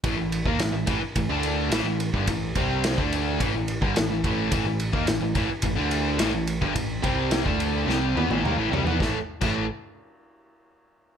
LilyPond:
<<
  \new Staff \with { instrumentName = "Distorted electric guitar" } { \clef bass \time 4/4 \key a \minor \tempo 4 = 107 <a, e>16 <a, e>8 <dis bes>16 <a, e>16 <a, e>16 <a, e>16 r16 <a, e>16 <d a d'>8. <a, e>16 <a, e>8 <g, d>16 | <a, e>8 <c g c'>8. <d a d'>8. <a, e>16 <a, e>8 <g, d>16 <a, e>16 <a, e>16 <a, e a>8 | <a, e>16 <a, e>8 <dis bes>16 <a, e>16 <a, e>16 <a, e>16 r16 <a, e>16 <d a d'>8. <a, e>16 <a, e>8 <g, d>16 | <a, e>8 <c g c'>8. <d a d'>8. <c g c'>8 <e b>16 <a, e>16 <dis bes>16 <a, e>16 <c g>16 <e b>16 |
<a, e a>16 r8 <a, e a>8 r2 r8. | }
  \new Staff \with { instrumentName = "Overdriven electric guitar" } { \clef bass \time 4/4 \key a \minor <a, e>16 <a, e>8 <dis bes>16 <a, e>16 <a, e>16 <a, e>16 r16 <a, e>16 <d a d'>8. <a, e>16 <a, e>8 <g, d>16 | <a, e>8 <c g c'>8. <d a d'>8. <a, e>16 <a, e>8 <g, d>16 <a, e>16 <a, e>16 <a, e a>8 | <a, e>16 <a, e>8 <dis bes>16 <a, e>16 <a, e>16 <a, e>16 r16 <a, e>16 <d a d'>8. <a, e>16 <a, e>8 <g, d>16 | <a, e>8 <c g c'>8. <d a d'>8. <c g c'>8 <e b>16 <a, e>16 <dis bes>16 <a, e>16 <c g>16 <e b>16 |
<a, e a>16 r8 <a, e a>8 r2 r8. | }
  \new Staff \with { instrumentName = "Picked electric bass" } { \clef bass \time 4/4 \key a \minor a,,16 a,,8 dis,16 a,,16 a,,16 r8 a,,16 d,8. a,,16 a,,8 g,,16 | a,,8 c,8. d,8. a,,16 a,,8 g,,16 a,,16 a,,16 a,,8 | a,,16 a,,8 dis,16 a,,16 a,,16 a,,16 r16 a,,16 d,8. a,,16 a,,8 g,,16 | a,,8 c,8. d,8. c,8 e,16 a,,16 dis,16 a,,16 c,16 e,16 |
a,,16 r8 a,,8 r2 r8. | }
  \new DrumStaff \with { instrumentName = "Drums" } \drummode { \time 4/4 <bd cymr>8 cymr16 bd16 <cymr sn>8 <bd cymr>8 <bd cymr>8 cymr8 <cymr sn>8 cymr16 bd16 | <bd cymr>8 <bd cymr>8 <cymr sn>16 bd16 cymr8 <bd cymr>8 cymr16 bd16 <cymr sn>8 <bd cymr>8 | <bd cymr>8 cymr16 bd16 <cymr sn>8 <bd cymr>8 <bd cymr>8 cymr8 <cymr sn>8 cymr16 bd16 | <bd cymr>8 <bd cymr>8 <cymr sn>16 bd16 cymr8 sn8 tommh16 tommh16 toml8 tomfh16 tomfh16 |
<bd sn>8. <cymc bd>16 r4 r4 r4 | }
>>